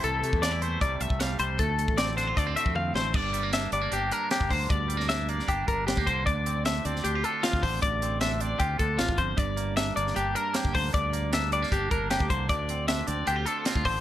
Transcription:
<<
  \new Staff \with { instrumentName = "Clean electric guitar" } { \time 4/4 \key d \minor \tempo 4 = 154 a'4 d''8 c''8 d''8 e''8 f''8 c''8 | a'4 d''8 c''8 d''8 e''8 f''8 c''8 | d''4 e''8 d''8 g'8 bes'8 g'8 c''8 | d''4 e''8 d''8 g'8 bes'8 g'8 c''8 |
d''4 e''8 d''8 g'8 a'8 f'8 c''8 | d''4 e''8 d''8 g'8 a'8 f'8 c''8 | d''4 e''8 d''8 g'8 bes'8 g'8 c''8 | d''4 e''8 d''8 g'8 bes'8 g'8 c''8 |
d''4 e''8 d''8 g'8 a'8 f'8 c''8 | }
  \new Staff \with { instrumentName = "Clean electric guitar" } { \time 4/4 \key d \minor << { <e g a e'>8 a8 d'16 e'16 a8 g8 a8 g8 g8 | a4 c'8 d'16 f'16 a16 c'16 a8 c'8 a8 | r8 g16 bes16 d'8 g16 bes16 d'8 d'8 bes4 | r8 g16 bes16 d'8 bes8 d'8 d'8 g16 bes8. |
r8 c'8 d'8 c'8 d'16 f'16 d'8 c'4 | r8 c'8 d'8 c'8 f'8 d'4. | r8 bes8 d'8 bes8 d'8 d'8 bes4 | r8 bes8 d'8 g16 bes16 d'8 d'8 bes4 |
r8 c'8 d'8 c'8 d'16 f'16 d'8 c'4 | } \\ { c4 e4 c4. c8 | d,4. d4 a,4. | g,2.~ g,8 d8 | g,2.~ g,8 d8 |
d,2.~ d,8 d8 | d,2. e,8 f,8 | g,2.~ g,8 d8 | g,2.~ g,8 d8 |
d,2.~ d,8 d8 | } >> }
  \new Staff \with { instrumentName = "Fingered electric bass" } { \clef bass \time 4/4 \key d \minor c,8 c16 e,4~ e,16 c,8 c,16 c,8. c,8 | d,8. a,,4~ a,,16 d,8 r16 f,8. a,,8 | g,,4. g,,8 g,,8 r8. g,,16 d,8 | d,2 g,,8 g,,8. d,16 c,8 |
d,4. d,8 d,8 r8. d,16 a,,8 | a,,2 d,8 d,8 a,,8 g,,8 | g,,4. g,,8 g,,8 r8. g,,16 d,8 | d,2 g,,8 g,,8. d,16 c,8 |
d,4. d,8 d,8 r8. d,16 a,,8 | }
  \new DrumStaff \with { instrumentName = "Drums" } \drummode { \time 4/4 hh8 hh16 bd16 <hh sn>8 hh8 <hh bd>8 hh16 bd16 <hh sn>8 hh8 | <hh bd>8 hh16 bd16 <hh sn>8 <hh sn>8 <hh bd>8 hh16 bd16 tommh8 sn8 | <cymc bd>8 hh8 <hh sn>8 hh8 hh8 hh8 <hh sn>16 bd16 <hho bd>8 | <hh bd>8 hh16 sn16 <hh sn>8 hh16 sn16 <hh bd>8 <hh bd>8 <hh sn>16 bd16 <hh bd>8 |
<hh bd>8 hh8 <hh sn>8 hh16 sn16 hh8 hh8 <hh sn>16 <bd sn>16 <hho bd>8 | <hh bd>8 hh8 <hh sn>8 hh8 <hh bd>8 <hh bd>8 <hh sn>16 bd16 <hh bd>8 | <hh bd>8 hh8 <hh sn>8 hh16 sn16 hh8 hh8 <hh sn>16 bd16 <hho bd>8 | <hh bd>8 hh8 <hh sn>8 hh16 sn16 <hh bd>8 <hh bd>8 <hh sn>16 bd16 <hh bd>8 |
<hh bd>8 hh8 <hh sn>8 hh8 hh8 hh8 <hh sn>16 bd16 <hho bd>8 | }
>>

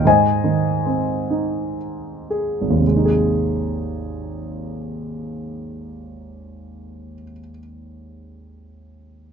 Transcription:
<<
  \new Staff \with { instrumentName = "Grand piano" } { \time 6/8 \key aes \major \tempo 4. = 37 <c'' ees'' aes''>2 r4 | r2. | r2. | }
  \new Staff \with { instrumentName = "Grand piano" } { \clef bass \time 6/8 \key aes \major aes,8 ees8 c'8 ees'4 aes'8 | <aes,, ees, c aes ees' aes'>2.~ | <aes,, ees, c aes ees' aes'>2. | }
>>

